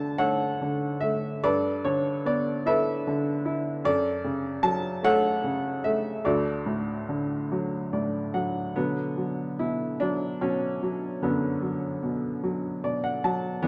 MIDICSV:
0, 0, Header, 1, 2, 480
1, 0, Start_track
1, 0, Key_signature, 2, "major"
1, 0, Tempo, 825309
1, 831, Time_signature, 6, 3, 24, 8
1, 1781, Tempo, 796813
1, 3701, Tempo, 832178
1, 5148, Key_signature, 2, "minor"
1, 6101, Tempo, 808625
1, 8039, End_track
2, 0, Start_track
2, 0, Title_t, "Upright piano"
2, 0, Program_c, 0, 0
2, 0, Control_c, 0, 64, 127
2, 0, Note_on_c, 0, 50, 47
2, 0, Note_on_c, 0, 57, 42
2, 0, Note_on_c, 0, 66, 50
2, 0, Note_on_c, 0, 69, 52
2, 0, Note_on_c, 0, 74, 77
2, 0, Note_on_c, 0, 81, 80
2, 82, Note_off_c, 0, 66, 0
2, 82, Note_off_c, 0, 69, 0
2, 86, Note_off_c, 0, 81, 0
2, 98, Note_off_c, 0, 57, 0
2, 107, Note_on_c, 0, 57, 47
2, 107, Note_on_c, 0, 78, 81
2, 109, Note_on_c, 0, 73, 59
2, 113, Note_on_c, 0, 69, 57
2, 349, Note_off_c, 0, 50, 0
2, 358, Note_on_c, 0, 50, 44
2, 585, Note_on_c, 0, 76, 77
2, 587, Note_off_c, 0, 57, 0
2, 596, Note_on_c, 0, 57, 49
2, 607, Note_off_c, 0, 78, 0
2, 810, Note_off_c, 0, 73, 0
2, 812, Note_off_c, 0, 69, 0
2, 822, Note_off_c, 0, 50, 0
2, 827, Note_off_c, 0, 57, 0
2, 835, Note_off_c, 0, 74, 0
2, 835, Note_off_c, 0, 76, 0
2, 835, Note_on_c, 0, 74, 85
2, 836, Note_on_c, 0, 43, 57
2, 837, Note_on_c, 0, 69, 59
2, 837, Note_on_c, 0, 71, 63
2, 839, Control_c, 0, 64, 0
2, 954, Control_c, 0, 64, 127
2, 1055, Note_off_c, 0, 74, 0
2, 1073, Note_on_c, 0, 73, 72
2, 1077, Note_on_c, 0, 50, 44
2, 1294, Note_off_c, 0, 73, 0
2, 1311, Note_on_c, 0, 59, 49
2, 1316, Note_on_c, 0, 74, 73
2, 1526, Note_off_c, 0, 69, 0
2, 1526, Note_off_c, 0, 71, 0
2, 1534, Note_off_c, 0, 74, 0
2, 1545, Note_on_c, 0, 64, 52
2, 1548, Note_on_c, 0, 69, 58
2, 1551, Note_on_c, 0, 76, 82
2, 1553, Note_on_c, 0, 71, 61
2, 1778, Note_off_c, 0, 50, 0
2, 1787, Note_on_c, 0, 50, 50
2, 2008, Note_off_c, 0, 64, 0
2, 2017, Note_on_c, 0, 64, 53
2, 2059, Note_off_c, 0, 76, 0
2, 2233, Note_off_c, 0, 59, 0
2, 2233, Note_off_c, 0, 69, 0
2, 2235, Note_off_c, 0, 43, 0
2, 2236, Note_off_c, 0, 71, 0
2, 2245, Note_off_c, 0, 50, 0
2, 2247, Note_off_c, 0, 64, 0
2, 2252, Note_on_c, 0, 42, 63
2, 2256, Note_on_c, 0, 69, 62
2, 2257, Note_on_c, 0, 74, 91
2, 2265, Control_c, 0, 64, 0
2, 2365, Control_c, 0, 64, 127
2, 2493, Note_on_c, 0, 49, 52
2, 2725, Note_on_c, 0, 81, 84
2, 2726, Note_on_c, 0, 54, 56
2, 2743, Note_off_c, 0, 74, 0
2, 2946, Note_off_c, 0, 69, 0
2, 2952, Note_off_c, 0, 81, 0
2, 2966, Note_on_c, 0, 57, 59
2, 2974, Note_on_c, 0, 73, 64
2, 2976, Note_on_c, 0, 78, 95
2, 2977, Note_on_c, 0, 69, 68
2, 3205, Note_off_c, 0, 49, 0
2, 3214, Note_on_c, 0, 49, 50
2, 3437, Note_off_c, 0, 78, 0
2, 3452, Note_off_c, 0, 57, 0
2, 3456, Note_on_c, 0, 76, 78
2, 3461, Note_on_c, 0, 57, 56
2, 3677, Note_off_c, 0, 42, 0
2, 3678, Note_off_c, 0, 54, 0
2, 3681, Note_off_c, 0, 73, 0
2, 3682, Note_off_c, 0, 69, 0
2, 3688, Note_off_c, 0, 49, 0
2, 3697, Note_off_c, 0, 57, 0
2, 3698, Note_on_c, 0, 69, 54
2, 3701, Note_on_c, 0, 74, 71
2, 3707, Note_on_c, 0, 38, 62
2, 3707, Note_on_c, 0, 66, 50
2, 3709, Note_off_c, 0, 76, 0
2, 3712, Control_c, 0, 64, 0
2, 3796, Control_c, 0, 64, 127
2, 3938, Note_on_c, 0, 45, 49
2, 4185, Note_on_c, 0, 50, 50
2, 4432, Note_on_c, 0, 54, 47
2, 4661, Note_off_c, 0, 45, 0
2, 4661, Note_off_c, 0, 74, 0
2, 4670, Note_on_c, 0, 45, 42
2, 4670, Note_on_c, 0, 74, 50
2, 4885, Note_off_c, 0, 69, 0
2, 4889, Note_off_c, 0, 66, 0
2, 4894, Note_off_c, 0, 74, 0
2, 4900, Note_off_c, 0, 54, 0
2, 4907, Note_on_c, 0, 78, 56
2, 4908, Note_on_c, 0, 54, 44
2, 5127, Note_off_c, 0, 38, 0
2, 5128, Note_off_c, 0, 50, 0
2, 5130, Note_off_c, 0, 78, 0
2, 5135, Note_off_c, 0, 45, 0
2, 5141, Note_off_c, 0, 54, 0
2, 5147, Note_on_c, 0, 47, 46
2, 5148, Note_on_c, 0, 59, 70
2, 5151, Note_on_c, 0, 54, 47
2, 5152, Note_on_c, 0, 50, 47
2, 5156, Control_c, 0, 64, 0
2, 5252, Control_c, 0, 64, 127
2, 5380, Note_off_c, 0, 54, 0
2, 5389, Note_on_c, 0, 54, 39
2, 5601, Note_off_c, 0, 59, 0
2, 5623, Note_off_c, 0, 47, 0
2, 5629, Note_on_c, 0, 64, 65
2, 5632, Note_on_c, 0, 47, 41
2, 5842, Note_off_c, 0, 50, 0
2, 5850, Note_off_c, 0, 64, 0
2, 5864, Note_on_c, 0, 62, 75
2, 5865, Note_off_c, 0, 54, 0
2, 5873, Note_on_c, 0, 54, 46
2, 6085, Note_off_c, 0, 62, 0
2, 6093, Note_off_c, 0, 54, 0
2, 6097, Note_off_c, 0, 47, 0
2, 6101, Note_on_c, 0, 54, 47
2, 6103, Note_on_c, 0, 61, 68
2, 6106, Note_on_c, 0, 47, 41
2, 6340, Note_off_c, 0, 54, 0
2, 6348, Note_on_c, 0, 54, 44
2, 6576, Note_off_c, 0, 54, 0
2, 6585, Note_on_c, 0, 42, 52
2, 6585, Note_on_c, 0, 50, 50
2, 6585, Note_on_c, 0, 54, 43
2, 6586, Note_on_c, 0, 59, 61
2, 6597, Note_off_c, 0, 61, 0
2, 6811, Note_off_c, 0, 54, 0
2, 6820, Note_on_c, 0, 54, 39
2, 7037, Note_off_c, 0, 47, 0
2, 7062, Note_on_c, 0, 47, 44
2, 7277, Note_off_c, 0, 50, 0
2, 7278, Note_off_c, 0, 59, 0
2, 7294, Note_off_c, 0, 54, 0
2, 7303, Note_on_c, 0, 54, 50
2, 7533, Note_off_c, 0, 47, 0
2, 7542, Note_on_c, 0, 47, 47
2, 7543, Note_on_c, 0, 74, 58
2, 7654, Note_off_c, 0, 74, 0
2, 7660, Note_on_c, 0, 78, 58
2, 7772, Note_off_c, 0, 78, 0
2, 7774, Note_off_c, 0, 54, 0
2, 7782, Note_on_c, 0, 81, 62
2, 7783, Note_on_c, 0, 54, 52
2, 7999, Note_off_c, 0, 42, 0
2, 8005, Note_off_c, 0, 81, 0
2, 8007, Note_off_c, 0, 47, 0
2, 8009, Note_on_c, 0, 59, 81
2, 8012, Note_on_c, 0, 52, 57
2, 8015, Note_off_c, 0, 54, 0
2, 8015, Note_on_c, 0, 50, 54
2, 8028, Control_c, 0, 64, 0
2, 8039, Note_off_c, 0, 50, 0
2, 8039, Note_off_c, 0, 52, 0
2, 8039, Note_off_c, 0, 59, 0
2, 8039, End_track
0, 0, End_of_file